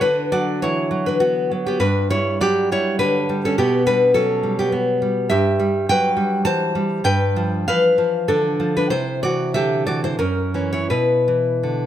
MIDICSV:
0, 0, Header, 1, 2, 480
1, 0, Start_track
1, 0, Tempo, 595238
1, 23, Time_signature, 3, 2, 24, 8
1, 2424, Tempo, 575816
1, 4824, Tempo, 597015
1, 5784, Tempo, 622407
1, 8184, Tempo, 724638
1, 9291, End_track
2, 0, Start_track
2, 0, Title_t, "Nylon-string guitar"
2, 0, Program_c, 0, 24
2, 8, Note_on_c, 0, 71, 87
2, 13, Note_on_c, 0, 50, 68
2, 17, Note_on_c, 0, 62, 68
2, 241, Note_off_c, 0, 62, 0
2, 243, Note_off_c, 0, 71, 0
2, 258, Note_on_c, 0, 74, 87
2, 262, Note_on_c, 0, 54, 54
2, 267, Note_on_c, 0, 66, 66
2, 487, Note_off_c, 0, 66, 0
2, 490, Note_off_c, 0, 74, 0
2, 502, Note_on_c, 0, 73, 90
2, 506, Note_on_c, 0, 52, 52
2, 514, Note_on_c, 0, 64, 73
2, 722, Note_off_c, 0, 54, 0
2, 732, Note_on_c, 0, 54, 54
2, 843, Note_off_c, 0, 64, 0
2, 848, Note_off_c, 0, 73, 0
2, 857, Note_on_c, 0, 71, 84
2, 873, Note_on_c, 0, 62, 62
2, 966, Note_off_c, 0, 62, 0
2, 969, Note_on_c, 0, 66, 86
2, 977, Note_off_c, 0, 71, 0
2, 981, Note_on_c, 0, 59, 63
2, 1212, Note_off_c, 0, 54, 0
2, 1219, Note_off_c, 0, 52, 0
2, 1222, Note_on_c, 0, 54, 52
2, 1313, Note_off_c, 0, 59, 0
2, 1317, Note_off_c, 0, 66, 0
2, 1342, Note_on_c, 0, 67, 81
2, 1355, Note_on_c, 0, 59, 61
2, 1421, Note_off_c, 0, 50, 0
2, 1448, Note_on_c, 0, 43, 67
2, 1451, Note_on_c, 0, 71, 89
2, 1457, Note_off_c, 0, 67, 0
2, 1460, Note_off_c, 0, 59, 0
2, 1461, Note_off_c, 0, 54, 0
2, 1461, Note_on_c, 0, 62, 69
2, 1687, Note_off_c, 0, 62, 0
2, 1688, Note_off_c, 0, 71, 0
2, 1697, Note_on_c, 0, 55, 58
2, 1697, Note_on_c, 0, 73, 98
2, 1708, Note_on_c, 0, 64, 69
2, 1932, Note_off_c, 0, 64, 0
2, 1933, Note_off_c, 0, 73, 0
2, 1940, Note_on_c, 0, 54, 55
2, 1945, Note_on_c, 0, 74, 99
2, 1955, Note_on_c, 0, 67, 76
2, 2176, Note_off_c, 0, 67, 0
2, 2177, Note_off_c, 0, 74, 0
2, 2182, Note_off_c, 0, 55, 0
2, 2190, Note_on_c, 0, 55, 55
2, 2195, Note_on_c, 0, 73, 90
2, 2197, Note_on_c, 0, 64, 72
2, 2408, Note_off_c, 0, 73, 0
2, 2411, Note_on_c, 0, 71, 99
2, 2413, Note_off_c, 0, 64, 0
2, 2417, Note_on_c, 0, 50, 55
2, 2425, Note_on_c, 0, 62, 72
2, 2653, Note_off_c, 0, 55, 0
2, 2659, Note_off_c, 0, 54, 0
2, 2663, Note_on_c, 0, 55, 57
2, 2755, Note_off_c, 0, 62, 0
2, 2758, Note_off_c, 0, 71, 0
2, 2795, Note_on_c, 0, 69, 85
2, 2801, Note_on_c, 0, 61, 63
2, 2858, Note_off_c, 0, 43, 0
2, 2893, Note_off_c, 0, 50, 0
2, 2897, Note_off_c, 0, 55, 0
2, 2900, Note_off_c, 0, 61, 0
2, 2901, Note_off_c, 0, 69, 0
2, 2902, Note_on_c, 0, 47, 76
2, 2905, Note_on_c, 0, 67, 92
2, 2912, Note_on_c, 0, 59, 69
2, 3126, Note_off_c, 0, 59, 0
2, 3127, Note_off_c, 0, 67, 0
2, 3138, Note_on_c, 0, 55, 63
2, 3142, Note_on_c, 0, 71, 98
2, 3153, Note_on_c, 0, 62, 71
2, 3368, Note_off_c, 0, 62, 0
2, 3368, Note_off_c, 0, 71, 0
2, 3372, Note_on_c, 0, 69, 104
2, 3377, Note_on_c, 0, 54, 59
2, 3382, Note_on_c, 0, 61, 75
2, 3604, Note_off_c, 0, 55, 0
2, 3614, Note_on_c, 0, 55, 58
2, 3717, Note_off_c, 0, 61, 0
2, 3723, Note_off_c, 0, 69, 0
2, 3743, Note_on_c, 0, 67, 84
2, 3754, Note_on_c, 0, 59, 65
2, 3845, Note_off_c, 0, 59, 0
2, 3855, Note_on_c, 0, 59, 59
2, 3863, Note_off_c, 0, 67, 0
2, 4092, Note_off_c, 0, 55, 0
2, 4102, Note_on_c, 0, 55, 60
2, 4104, Note_off_c, 0, 54, 0
2, 4314, Note_off_c, 0, 47, 0
2, 4333, Note_on_c, 0, 76, 98
2, 4337, Note_on_c, 0, 43, 77
2, 4341, Note_off_c, 0, 59, 0
2, 4343, Note_off_c, 0, 55, 0
2, 4345, Note_on_c, 0, 67, 79
2, 4582, Note_on_c, 0, 55, 63
2, 4791, Note_off_c, 0, 67, 0
2, 4799, Note_off_c, 0, 76, 0
2, 4830, Note_on_c, 0, 79, 116
2, 4831, Note_on_c, 0, 54, 58
2, 4843, Note_on_c, 0, 71, 87
2, 5041, Note_off_c, 0, 55, 0
2, 5051, Note_on_c, 0, 55, 62
2, 5271, Note_off_c, 0, 71, 0
2, 5273, Note_off_c, 0, 43, 0
2, 5274, Note_off_c, 0, 79, 0
2, 5276, Note_on_c, 0, 52, 59
2, 5278, Note_on_c, 0, 81, 111
2, 5289, Note_on_c, 0, 72, 87
2, 5512, Note_off_c, 0, 55, 0
2, 5521, Note_on_c, 0, 55, 58
2, 5540, Note_off_c, 0, 54, 0
2, 5750, Note_off_c, 0, 72, 0
2, 5751, Note_off_c, 0, 52, 0
2, 5754, Note_on_c, 0, 43, 78
2, 5755, Note_off_c, 0, 81, 0
2, 5758, Note_on_c, 0, 79, 107
2, 5764, Note_on_c, 0, 71, 81
2, 5777, Note_off_c, 0, 55, 0
2, 6004, Note_on_c, 0, 53, 61
2, 6222, Note_off_c, 0, 71, 0
2, 6231, Note_off_c, 0, 79, 0
2, 6246, Note_on_c, 0, 77, 106
2, 6249, Note_off_c, 0, 43, 0
2, 6252, Note_on_c, 0, 52, 57
2, 6255, Note_on_c, 0, 71, 85
2, 6469, Note_off_c, 0, 53, 0
2, 6479, Note_on_c, 0, 53, 58
2, 6697, Note_off_c, 0, 71, 0
2, 6704, Note_off_c, 0, 77, 0
2, 6711, Note_on_c, 0, 50, 58
2, 6712, Note_on_c, 0, 69, 97
2, 6720, Note_on_c, 0, 62, 71
2, 6945, Note_off_c, 0, 53, 0
2, 6955, Note_on_c, 0, 53, 56
2, 6961, Note_off_c, 0, 52, 0
2, 7055, Note_off_c, 0, 62, 0
2, 7061, Note_off_c, 0, 69, 0
2, 7085, Note_on_c, 0, 71, 75
2, 7096, Note_on_c, 0, 62, 54
2, 7188, Note_off_c, 0, 71, 0
2, 7191, Note_on_c, 0, 72, 96
2, 7195, Note_on_c, 0, 48, 67
2, 7196, Note_off_c, 0, 50, 0
2, 7198, Note_off_c, 0, 62, 0
2, 7200, Note_off_c, 0, 53, 0
2, 7201, Note_on_c, 0, 64, 71
2, 7430, Note_off_c, 0, 64, 0
2, 7431, Note_off_c, 0, 72, 0
2, 7441, Note_on_c, 0, 74, 90
2, 7445, Note_on_c, 0, 52, 57
2, 7456, Note_on_c, 0, 66, 72
2, 7677, Note_off_c, 0, 74, 0
2, 7678, Note_off_c, 0, 66, 0
2, 7684, Note_on_c, 0, 76, 93
2, 7688, Note_on_c, 0, 50, 49
2, 7696, Note_on_c, 0, 67, 77
2, 7919, Note_off_c, 0, 67, 0
2, 7920, Note_off_c, 0, 76, 0
2, 7929, Note_off_c, 0, 52, 0
2, 7933, Note_on_c, 0, 74, 89
2, 7939, Note_on_c, 0, 52, 50
2, 7944, Note_on_c, 0, 66, 63
2, 8054, Note_off_c, 0, 66, 0
2, 8056, Note_off_c, 0, 74, 0
2, 8067, Note_on_c, 0, 72, 84
2, 8074, Note_on_c, 0, 64, 62
2, 8148, Note_off_c, 0, 48, 0
2, 8178, Note_off_c, 0, 72, 0
2, 8180, Note_on_c, 0, 42, 67
2, 8181, Note_on_c, 0, 70, 82
2, 8182, Note_off_c, 0, 50, 0
2, 8184, Note_off_c, 0, 64, 0
2, 8186, Note_off_c, 0, 52, 0
2, 8187, Note_on_c, 0, 61, 62
2, 8411, Note_off_c, 0, 61, 0
2, 8417, Note_on_c, 0, 52, 48
2, 8421, Note_on_c, 0, 61, 52
2, 8520, Note_off_c, 0, 70, 0
2, 8538, Note_on_c, 0, 73, 77
2, 8546, Note_on_c, 0, 64, 58
2, 8639, Note_off_c, 0, 52, 0
2, 8640, Note_off_c, 0, 61, 0
2, 8647, Note_off_c, 0, 42, 0
2, 8651, Note_off_c, 0, 73, 0
2, 8653, Note_off_c, 0, 64, 0
2, 8653, Note_on_c, 0, 71, 76
2, 8654, Note_on_c, 0, 47, 60
2, 8661, Note_on_c, 0, 64, 60
2, 8904, Note_on_c, 0, 52, 51
2, 9140, Note_on_c, 0, 50, 46
2, 9291, Note_off_c, 0, 47, 0
2, 9291, Note_off_c, 0, 50, 0
2, 9291, Note_off_c, 0, 52, 0
2, 9291, Note_off_c, 0, 64, 0
2, 9291, Note_off_c, 0, 71, 0
2, 9291, End_track
0, 0, End_of_file